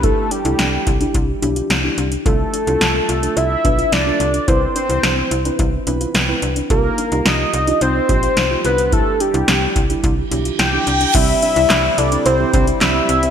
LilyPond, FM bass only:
\new Staff \with { instrumentName = "FM bass" } { \clef bass \time 4/4 \key c \major \tempo 4 = 108 c,8 r16 c,16 c,8 c,8 c,8 b,,8 c,8 c,8 | c,8 r16 c,16 c,8 c,8 c,8 b,,8 c,8 c,8 | c,8 r16 c,16 c,8 c,8 c,8 b,,8 c,8 c,8 | c,8 r16 c,16 c,8 c,8 c,8 bes,,8 c,8 c,8~ |
c,8 r16 c,16 c,8 c,8 c,8 b,,8 c,8 c,8 | c,8 r16 c,16 c,8 c,8 c,8 c,8 c,8 c,8 | }